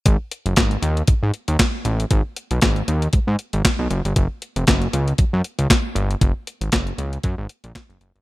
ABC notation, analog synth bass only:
X:1
M:4/4
L:1/16
Q:"Swing 16ths" 1/4=117
K:G#dor
V:1 name="Analog synth bass" clef=bass
G,,, z2 F,,, G,,,2 D,,2 G,, G,, z D,, z2 =A,,,2 | G,,, z2 B,,, G,,,2 D,,2 G,, G,, z G,,, z B,,, F,,, =G,,, | F,,, z2 E,,, F,,,2 C,,2 F,, F,, z C,, z2 =G,,,2 | F,,, z2 G,,, F,,,2 C,,2 F,, G,,, z A,,, z F,,, F,,, =G,,, |]